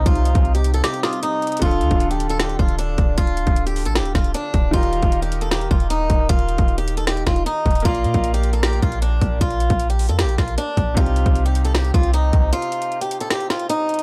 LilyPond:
<<
  \new Staff \with { instrumentName = "Synth bell" } { \time 4/4 \key d \phrygian \tempo 4 = 154 r2 d'''8 ees'''4. | r1 | r1 | r1 |
r1 | r1 | r1 | r1 |
r1 | }
  \new Staff \with { instrumentName = "Steel-string acoustic guitar" } { \time 4/4 \key d \phrygian f'4~ f'16 g'8 a'16 g'8 f'8 ees'4 | f'4~ f'16 g'8 a'16 g'8 f'8 d'4 | f'4~ f'16 g'8 a'16 g'8 f'8 d'4 | f'4~ f'16 g'8 a'16 g'8 f'8 ees'4 |
f'4~ f'16 g'8 a'16 g'8 f'8 ees'4 | f'4~ f'16 g'8 a'16 g'8 f'8 d'4 | f'4~ f'16 g'8 a'16 g'8 f'8 d'4 | f'4~ f'16 g'8 a'16 g'8 f'8 ees'4 |
f'4~ f'16 g'8 a'16 g'8 f'8 ees'4 | }
  \new Staff \with { instrumentName = "Grand piano" } { \time 4/4 \key d \phrygian <c c' ees' g'>1 | <d d' f' a'>1~ | <d d' f' a'>1 | <ees ees' g' bes'>1~ |
<ees ees' g' bes'>1 | <bes bes' d'' f''>1~ | <bes bes' d'' f''>1 | <c c' ees' g'>1~ |
<c c' ees' g'>1 | }
  \new Staff \with { instrumentName = "Analog synth pad" } { \clef bass \time 4/4 \key d \phrygian <c g ees'>1 | r1 | r1 | r1 |
r1 | r1 | r1 | r1 |
r1 | }
  \new Staff \with { instrumentName = "808-style bass" } { \clef bass \time 4/4 \key d \phrygian c,8. c,4~ c,16 r2 | d,,8 d,16 d,,4.~ d,,16 d,,4 d,,8 | d,,8. d,,4 a,,16. d,,16. d,,8 r8 d,,8 | ees,,8. ees,,4.~ ees,,16 ees,,4 ees,,8 |
ees,,8. ees,,4.~ ees,,16 ees,,8 r8 ees,,8 | bes,,8 bes,16 bes,,4.~ bes,,16 bes,,4 bes,,8 | bes,,8. bes,,4 f,16. bes,,16. bes,,8 r8 bes,,8 | c,8. c,4.~ c,16 c,4 c,8 |
r1 | }
  \new DrumStaff \with { instrumentName = "Drums" } \drummode { \time 4/4 <hh bd>16 hh16 hh16 <hh bd>16 hh16 hh16 hh16 hh16 <hh sn>16 hh16 sn16 hh16 hh8 hh32 hh32 hh32 hh32 | <hh bd>16 hh16 hh16 <hh bd>16 hh16 hh16 hh16 hh16 <hh sn>16 hh16 bd16 hh16 hh8 <hh bd>8 | <hh bd>16 hh16 hh16 <hh bd>16 hh16 hh16 hho16 hh16 <hh sn>16 hh16 <bd sn>16 hh16 hh8 <hh bd>8 | <hh bd>16 hh16 hh16 <hh bd>16 hh16 hh16 hh16 hh16 <hh sn>16 hh16 bd16 hh16 hh8 <hh bd>8 |
<hh bd>16 hh16 hh16 <hh bd>16 hh16 hh16 hh16 hh16 <hh sn>16 hh16 <bd sn>16 hh16 hh8 <hh bd>32 hh32 hh32 hh32 | <hh bd>16 hh16 hh16 <hh bd>16 hh16 hh16 hh16 hh16 <hh sn>16 hh16 bd16 hh16 hh8 <hh bd>8 | <hh bd>16 hh16 hh16 <hh bd>16 hh16 hh16 hho16 hh16 <hh sn>16 hh16 <bd sn>16 hh16 hh8 <hh bd>8 | <hh bd>16 hh16 hh16 <hh bd>16 hh16 hh16 hh16 hh16 <hh sn>16 hh16 bd16 hh16 hh8 <hh bd>8 |
hh16 hh16 hh16 hh16 hh16 hh16 hh16 hh16 <hh sn>16 hh16 sn16 hh16 hh8 hh32 hh32 hh16 | }
>>